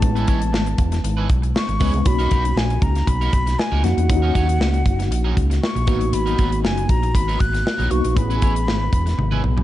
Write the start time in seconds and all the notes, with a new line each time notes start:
Already playing: A5
0.02 A1 G#3 B3 C#4 D#4, muted clean electric guitar stroke, kick, closed hi-hat
0.09 E4
0.16 G#3 C#4 E4 B4, closed hi-hat
0.27 A1 G#3 C#4 E4 C#5, kick, closed hi-hat
0.41 muted clean electric guitar stroke, closed hi-hat
0.53 G#1, muted clean electric guitar stroke, snare
0.66 muted clean electric guitar stroke, closed hi-hat
0.78 E1, kick, closed hi-hat
0.92 muted clean electric guitar stroke, snare, closed hi-hat
1.04 G#1, muted clean electric guitar stroke, closed hi-hat
1.17 G#3 C#4 E4 B4
1.29 B1, kick, closed hi-hat
1.42 muted clean electric guitar stroke, closed hi-hat
1.56 C#6, snare
1.68 G#1, muted clean electric guitar stroke, closed hi-hat
1.80 C#2 G#3 B3 C#4 E4 B4, kick, snare, open hi-hat
1.94 C2, muted clean electric guitar stroke, closed hi-hat
2.05 B1 A#3 C#4 D#4 F#4 B5, muted clean electric guitar stroke, kick, closed hi-hat
2.19 A#3 D#4 F#4 A#4, closed hi-hat
2.31 B1 A#3 D#4 F#4 A#4, kick, closed hi-hat
2.45 muted clean electric guitar stroke, closed hi-hat
2.56 A#1 G#5, muted clean electric guitar stroke, snare
2.70 muted clean electric guitar stroke, closed hi-hat
2.82 C#2 A#5, kick, closed hi-hat
2.95 muted clean electric guitar stroke, snare, closed hi-hat
3.07 B1 B5, muted clean electric guitar stroke, kick, closed hi-hat
3.21 A#3 D#4 F#4 A#4, closed hi-hat
3.33 B1, kick, closed hi-hat
3.46 muted clean electric guitar stroke, snare, closed hi-hat
3.58 G#5, muted clean electric guitar stroke, snare
3.72 C#2 A#3 D#4 F#4 A#4
3.83 F2 A#3 C#4 D#4 F#4 F#5, muted clean electric guitar stroke, snare, closed hi-hat
3.97 E2, muted clean electric guitar stroke, closed hi-hat
4.09 D#2 A#3 C#4 D#4 E4, muted clean electric guitar stroke, kick, closed hi-hat
4.16 F#4
4.22 F#3 C#4 D#4 A#4
4.34 D#2 F#3 C#4 D#4 C#5, kick, closed hi-hat
4.48 muted clean electric guitar stroke, closed hi-hat
4.60 C#2, muted clean electric guitar stroke, snare
4.73 muted clean electric guitar stroke, closed hi-hat
4.86 F#1, kick, closed hi-hat
4.99 muted clean electric guitar stroke, snare, closed hi-hat
5.11 A#1, muted clean electric guitar stroke, closed hi-hat
5.24 F#3 C#4 D#4 A#4
5.36 C#2, muted clean electric guitar stroke, kick, closed hi-hat
5.50 muted clean electric guitar stroke, snare, closed hi-hat
5.63 C#6, snare
5.75 A#1, muted clean electric guitar stroke, closed hi-hat
5.87 G#1 F#3 A#3 B3 D#4 F#4 A#4, kick, closed hi-hat
6.00 A1, muted clean electric guitar stroke, closed hi-hat
6.12 G#1 B5, muted clean electric guitar stroke, closed hi-hat
6.26 F#3 B3 D#4 A#4, closed hi-hat
6.38 G#1 F#3 B3 D#4 A#4, kick, closed hi-hat
6.52 muted clean electric guitar stroke, closed hi-hat
6.64 F#1 G#5, muted clean electric guitar stroke, snare
6.77 muted clean electric guitar stroke, closed hi-hat
6.89 A#1 A#5, kick, closed hi-hat
7.03 muted clean electric guitar stroke, closed hi-hat
7.15 G#1 B5, muted clean electric guitar stroke, kick, closed hi-hat
7.28 F#3 B3 D#4 A#4, closed hi-hat
7.40 G#1 F#6, muted clean electric guitar stroke, kick, closed hi-hat
7.53 muted clean electric guitar stroke, snare, closed hi-hat
7.65 muted clean electric guitar stroke, snare
7.78 A#1 F#3 B3 D#4 A#4, closed hi-hat
7.90 B1 A#3 B3 D#4 F#4 C#6, muted clean electric guitar stroke, closed hi-hat
8.04 A#1, muted clean electric guitar stroke, closed hi-hat
8.16 A1 B3 C#4 E4 G#4 B5, muted clean electric guitar stroke, kick, closed hi-hat
8.30 G#3 C#4 E4 B4, closed hi-hat
8.42 A1 G#3 C#4 E4 C#5, kick, closed hi-hat
8.55 muted clean electric guitar stroke, closed hi-hat
8.67 G#1, muted clean electric guitar stroke, snare
8.81 muted clean electric guitar stroke
8.93 E1, kick, closed hi-hat
9.06 muted clean electric guitar stroke, snare, closed hi-hat
9.17 G#1, muted clean electric guitar stroke, high tom
9.31 G#3 C#4 E4 B4, high tom
9.43 B1, muted clean electric guitar stroke, mid tom
9.57 muted clean electric guitar stroke, mid tom